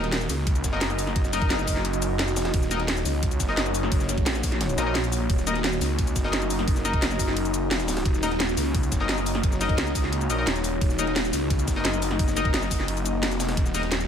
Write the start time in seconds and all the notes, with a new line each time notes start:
Already playing: D#1 A#3 D#4 F#4 D#5
0.04 snare, closed hi-hat
0.12 snare, closed hi-hat, ride
0.21 cabasa
0.29 C#2, open hi-hat, cabasa
0.47 kick, closed hi-hat, ride
0.55 closed hi-hat, cabasa
0.64 F#1, kick, snare, closed hi-hat, ride, cabasa
0.73 D#4 A#4 D#5, snare
0.81 snare, closed hi-hat, ride
0.90 snare, closed hi-hat, cabasa
0.99 open hi-hat, ride, cabasa
1.07 snare, ride
1.16 kick, closed hi-hat, ride
1.24 snare, cabasa
1.33 D#4 A#4 D#5, snare, closed hi-hat, ride, cabasa
1.42 kick, closed hi-hat
1.50 F#1, snare, closed hi-hat, ride
1.59 snare, cabasa
1.68 kick, snare, open hi-hat, ride, cabasa
1.76 snare
1.85 closed hi-hat, ride
1.93 closed hi-hat, cabasa
2.02 closed hi-hat, ride, cabasa
2.19 F1, snare, closed hi-hat, ride
2.28 snare, closed hi-hat, cabasa
2.36 snare, open hi-hat, ride, cabasa
2.45 snare, ride
2.54 D#1 C#5, kick, closed hi-hat, ride
2.62 snare, cabasa
2.71 D#4 A#4 D#5, snare, closed hi-hat, ride, cabasa
2.80 snare, closed hi-hat
2.88 snare, closed hi-hat, ride
2.97 cabasa
3.05 C#2, open hi-hat, cabasa
3.23 kick, closed hi-hat, ride
3.31 closed hi-hat, cabasa
3.40 F#1, kick, snare, closed hi-hat, ride, cabasa
3.49 D#4 A#4 D#5, snare
3.57 snare, closed hi-hat, ride
3.66 snare, closed hi-hat, cabasa
3.75 open hi-hat, cabasa
3.83 snare
3.92 kick, closed hi-hat, ride
4.00 snare, cabasa
4.09 snare, closed hi-hat, ride, cabasa
4.18 kick, closed hi-hat
4.26 A#1, snare, closed hi-hat, ride
4.35 snare, cabasa
4.43 kick, snare, open hi-hat, ride, cabasa
4.52 snare, closed hi-hat
4.61 snare, closed hi-hat, ride
4.69 closed hi-hat, cabasa
4.78 A#1 D#4 A#4 D#5, snare, closed hi-hat, ride, cabasa
4.87 D#4 A#4 D#5
4.95 snare, closed hi-hat, ride
5.04 closed hi-hat, cabasa
5.12 open hi-hat, ride, cabasa
5.30 D#1 D#5, kick, closed hi-hat, ride
5.38 snare, cabasa
5.47 D#4 A#4 D#5, snare, closed hi-hat, ride, cabasa
5.55 snare, closed hi-hat
5.64 snare, closed hi-hat, ride
5.73 cabasa
5.81 C#2, open hi-hat, cabasa
5.99 kick, closed hi-hat, ride
6.07 closed hi-hat, cabasa
6.16 F#1, kick, snare, closed hi-hat, ride, cabasa
6.24 D#4 A#4 D#5, snare
6.33 snare, closed hi-hat, ride
6.42 snare, closed hi-hat, cabasa
6.50 open hi-hat, ride, cabasa
6.59 snare, ride
6.68 kick, closed hi-hat, ride
6.76 snare, cabasa
6.85 D#4 A#4 D#5, snare, closed hi-hat, ride, cabasa
6.93 kick, closed hi-hat
7.02 F#1, snare, closed hi-hat, ride
7.11 snare, cabasa
7.19 kick, snare, open hi-hat, ride, cabasa
7.28 snare
7.37 closed hi-hat, ride
7.45 closed hi-hat, cabasa
7.54 closed hi-hat, ride, cabasa
7.71 snare, closed hi-hat, ride
7.80 snare, closed hi-hat, cabasa
7.88 snare, open hi-hat, ride, cabasa
7.97 snare, ride
8.05 D#1 C#5, kick, closed hi-hat, ride
8.14 snare, cabasa
8.23 D#4 A#4 D#5, snare, closed hi-hat, ride, cabasa
8.31 snare, closed hi-hat
8.40 snare, closed hi-hat, ride
8.49 cabasa
8.57 C#2, open hi-hat, cabasa
8.74 kick, closed hi-hat, ride
8.83 closed hi-hat, cabasa
8.92 F#1, kick, snare, closed hi-hat, ride, cabasa
9.00 D#4 A#4 D#5, snare
9.09 snare, closed hi-hat, ride
9.18 snare, closed hi-hat, cabasa
9.26 open hi-hat, ride, cabasa
9.35 snare, ride
9.43 kick, closed hi-hat, ride
9.52 snare, cabasa
9.61 D#4 A#4 D#5, snare, closed hi-hat, ride, cabasa
9.69 kick, closed hi-hat
9.78 C#2, snare, closed hi-hat, ride
9.87 snare, cabasa
9.95 kick, snare, open hi-hat, ride, cabasa
10.04 snare
10.12 closed hi-hat, ride
10.21 closed hi-hat, cabasa
10.30 A#1 D#4 A#4 D#5, closed hi-hat, ride, cabasa
10.38 D#4 A#4 D#5
10.47 D#1, snare, closed hi-hat, ride
10.56 snare, closed hi-hat, cabasa
10.64 open hi-hat, cabasa
10.81 D#1 D#5, kick, closed hi-hat, ride
10.90 snare, cabasa
10.99 D#4 A#4 D#5, snare, closed hi-hat, ride, cabasa
11.07 snare, closed hi-hat
11.16 snare, closed hi-hat, ride
11.25 cabasa
11.33 C#2, open hi-hat, cabasa
11.50 kick, closed hi-hat, ride
11.59 closed hi-hat, cabasa
11.68 F#1, kick, snare, closed hi-hat, ride, cabasa
11.76 D#4 A#4 D#5, snare
11.85 snare, closed hi-hat, ride
11.94 snare, closed hi-hat, cabasa
12.02 open hi-hat, ride, cabasa
12.11 snare, ride
12.19 kick, closed hi-hat, ride
12.28 snare, cabasa
12.37 D#4 A#4 D#5, snare, closed hi-hat, ride, cabasa
12.45 kick, closed hi-hat
12.54 F#1, snare, closed hi-hat, ride
12.62 snare, cabasa
12.71 kick, snare, open hi-hat, ride, cabasa
12.80 snare
12.88 closed hi-hat, ride
12.97 closed hi-hat, cabasa
13.05 closed hi-hat, ride, cabasa
13.23 F1, snare, closed hi-hat, ride
13.31 snare, closed hi-hat, cabasa
13.40 snare, open hi-hat, ride, cabasa
13.49 snare, ride
13.57 D#1 G#4, kick, closed hi-hat, ride
13.66 snare, cabasa
13.74 D#4 A#4 D#5, snare, closed hi-hat, ride, cabasa
13.83 snare, closed hi-hat
13.92 snare, closed hi-hat, ride
14.00 cabasa